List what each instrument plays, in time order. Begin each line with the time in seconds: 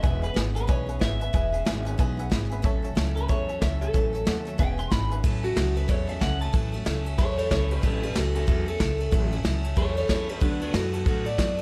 Already playing: clean electric guitar E5
0.03 upright bass E1, steel-string acoustic guitar E3 G#3 B3 C#4 G#4, upright piano B4 E5 G#5, kick, closed hi-hat
0.22 steel-string acoustic guitar B3 C#4 G#4, upright piano B4 E5 F#5, clean electric guitar B4, closed hi-hat
0.34 upright bass G#1, steel-string acoustic guitar G#3 B3 C#4 G#4, upright piano B4 E5 G#5, snare, closed hi-hat
0.55 steel-string acoustic guitar B3 C#4 G#4, upright piano B4 E5 F#5, clean electric guitar B4, closed hi-hat
0.67 upright bass B1, steel-string acoustic guitar E3 G#3 B3 C#4 G#4, upright piano B4 E5 G#5, clean electric guitar C#5, kick, closed hi-hat
0.87 steel-string acoustic guitar B3 C#4 G#4, upright piano B4 E5 G#5, closed hi-hat
0.99 upright bass G#1, steel-string acoustic guitar G#3 B3 C#4 G#4, upright piano B4 E5 B5, clean electric guitar E5, kick, snare, closed hi-hat
1.20 steel-string acoustic guitar B3 C#4 G#4, upright piano B4 E5 G#5, clean electric guitar E5, closed hi-hat
1.33 upright bass E1, steel-string acoustic guitar E3 G#3 B3 C#4 G#4, upright piano B4 E5 G#5, kick, closed hi-hat
1.52 steel-string acoustic guitar B3 C#4 G#4, upright piano B4 E5 G#5, closed hi-hat
1.65 upright bass G#1, steel-string acoustic guitar G#3 B3 C#4 G#4, upright piano B4 E5 G#5, snare, closed hi-hat
1.85 steel-string acoustic guitar B3 C#4 G#4, upright piano B4 E5 G#5, closed hi-hat
1.98 upright bass B1, steel-string acoustic guitar E3 G#3 B3 C#4 G#4, upright piano B4 E5 G#5, kick, closed hi-hat
2.17 steel-string acoustic guitar B3 C#4 G#4, upright piano B4 E5 F#5, closed hi-hat
2.30 upright bass G#1, steel-string acoustic guitar G#3 B3 C#4 G#4, upright piano B4 E5 B5, kick, snare, closed hi-hat
2.50 steel-string acoustic guitar B3 C#4 G#4, upright piano B4 E5 B5, closed hi-hat
2.62 upright bass A1, steel-string acoustic guitar A2 E3 F#3 A3 C#4 A4, upright piano C#5 E5 A5, kick, closed hi-hat
2.82 steel-string acoustic guitar F#3 A3 C#4 A4, upright piano C#5 E5 A5, closed hi-hat
2.95 upright bass C#2, steel-string acoustic guitar F#3 A3 C#4 A4, upright piano C#5 E5 A5, snare, closed hi-hat
3.15 steel-string acoustic guitar F#3 A3 C#4 A4, clean electric guitar B4, upright piano C#5 E5 A5, closed hi-hat
3.28 upright bass E2, steel-string acoustic guitar A2 E3 F#3 A3 C#4 A4, clean electric guitar C#5, upright piano C#5 E5 A5, kick, closed hi-hat
3.48 steel-string acoustic guitar F#3 A3 C#4 A4, upright piano C#5 E5 G#5, closed hi-hat
3.61 upright bass C#2, steel-string acoustic guitar F#3 A3 C#4 A4, upright piano C#5 E5 A5, clean electric guitar E5, kick, snare, closed hi-hat
3.81 steel-string acoustic guitar F#3 A3 C#4 A4, clean electric guitar A4, upright piano C#5 E5 A5, closed hi-hat
3.94 upright bass A1, steel-string acoustic guitar A2 E3 F#3 A3 C#4 A4, upright piano C#5 E5 A5, kick, closed hi-hat
4.13 steel-string acoustic guitar F#3 A3 C#4 A4, upright piano C#5 E5 A5, closed hi-hat
4.25 upright bass D#2, steel-string acoustic guitar F#3 A3 C#4 A4, upright piano C#5 E5 F#5, snare, closed hi-hat
4.45 steel-string acoustic guitar F#3 A3 C#4 A4, upright piano C#5 E5 A5, closed hi-hat
4.58 upright bass E1, steel-string acoustic guitar E3 G#3 B3 C#4 G#4, upright piano B4 E5 G#5, clean electric guitar G5, kick, closed hi-hat
4.78 steel-string acoustic guitar B3 C#4 G#4, upright piano B4 E5 G#5, clean electric guitar C6, closed hi-hat
4.90 upright bass G#1, steel-string acoustic guitar G#3 B3 C#4 G#4, upright piano B4 E5 B5, clean electric guitar B5, kick, snare, closed hi-hat
5.10 steel-string acoustic guitar B3 C#4 G#4, upright piano B4 E5 G#5, closed hi-hat
5.23 upright bass A1, steel-string acoustic guitar A2 E3 F#3 A3 C#4 A4, kick, ride
5.43 steel-string acoustic guitar F#3 A3 C#4 A4, clean electric guitar F#4, ride
5.56 upright bass C#2, steel-string acoustic guitar F#3 A3 C#4 A4, snare, ride
5.76 steel-string acoustic guitar F#3 A3 C#4 A4, clean electric guitar B4, ride
5.88 upright bass E2, steel-string acoustic guitar A2 E3 F#3 A3 C#4 A4, clean electric guitar C#5, kick, snare, ride
6.07 steel-string acoustic guitar F#3 A3 C#4 A4, clean electric guitar E5, ride
6.20 upright bass C#2, steel-string acoustic guitar F#3 A3 C#4 A4, clean electric guitar F#5, kick, snare, ride
6.40 steel-string acoustic guitar F#3 A3 C#4 A4, clean electric guitar A5, ride
6.53 upright bass A1, steel-string acoustic guitar A2 E3 F#3 A3 C#4 A4, kick, ride
6.72 steel-string acoustic guitar F#3 A3 C#4 A4, ride
6.85 upright bass C#2, steel-string acoustic guitar F#3 A3 C#4 A4, snare, ride
7.05 steel-string acoustic guitar F#3 A3 C#4 A4, ride
7.18 upright bass E2, steel-string acoustic guitar A2 E3 F#3 A3 C#4 A4, clean electric guitar A4 C#5, kick, snare, ride
7.37 steel-string acoustic guitar F#3 A3 C#4 A4, clean electric guitar A4 C#5, ride
7.50 upright bass C#2, steel-string acoustic guitar F#3 A3 C#4 A4, clean electric guitar A4 C#5, kick, snare, ride
7.69 steel-string acoustic guitar F#3 A3 C#4 A4, clean electric guitar G4 B4, ride
7.82 upright bass A1, steel-string acoustic guitar A2 E3 F#3 A3 C#4 A4, clean electric guitar G4 B4, kick, ride
8.02 steel-string acoustic guitar F#3 A3 C#4 A4, clean electric guitar G4 B4, ride
8.14 upright bass C#2, steel-string acoustic guitar F#3 A3 C#4 A4, clean electric guitar F#4 A4, snare, ride
8.34 steel-string acoustic guitar F#3 A3 C#4 A4, clean electric guitar F#4 A4, ride
8.47 upright bass E2, steel-string acoustic guitar A2 E3 F#3 A3 C#4 A4, clean electric guitar F#4 A4, kick, ride
8.66 steel-string acoustic guitar F#3 A3 C#4 A4, clean electric guitar A4, ride
8.78 upright bass C#2, steel-string acoustic guitar F#3 A3 C#4 A4, kick, snare, ride
8.98 steel-string acoustic guitar F#3 A3 C#4 A4, ride
9.11 upright bass A1, steel-string acoustic guitar A2 E3 F#3 A3 C#4 A4, kick, ride
9.31 steel-string acoustic guitar F#3 A3 C#4 A4, ride
9.43 upright bass C#2, steel-string acoustic guitar F#3 A3 C#4 A4, snare, ride
9.64 steel-string acoustic guitar F#3 A3 C#4 A4, ride
9.76 upright bass E2, steel-string acoustic guitar A2 E3 F#3 A3 C#4 A4, clean electric guitar A4 C#5, kick, ride
9.95 steel-string acoustic guitar F#3 A3 C#4 A4, clean electric guitar A4 C#5, ride
10.08 upright bass E2, steel-string acoustic guitar F#3 A3 C#4 A4, clean electric guitar A4 C#5, kick, snare, ride
10.28 steel-string acoustic guitar F#3 A3 C#4 A4, clean electric guitar G4 B4, ride
10.40 upright bass D2, steel-string acoustic guitar D3 F#3 B3 F#4 A4, clean electric guitar D4 B4, kick, ride
10.60 steel-string acoustic guitar B3 F#4 A4, clean electric guitar D4 B4, ride
10.73 upright bass F#2, steel-string acoustic guitar F#3 B3 F#4 A4, clean electric guitar F#4 A4, snare, ride
10.93 steel-string acoustic guitar B3 F#4 A4, clean electric guitar F#4 A4, ride
11.05 upright bass A2, steel-string acoustic guitar D3 F#3 B3 F#4 A4, clean electric guitar F#4 A4, kick, ride
11.25 steel-string acoustic guitar B3 F#4 A4, clean electric guitar D5, ride
11.37 upright bass F#2, steel-string acoustic guitar F#3 B3 F#4 A4, kick, snare, ride
11.57 steel-string acoustic guitar A4, ride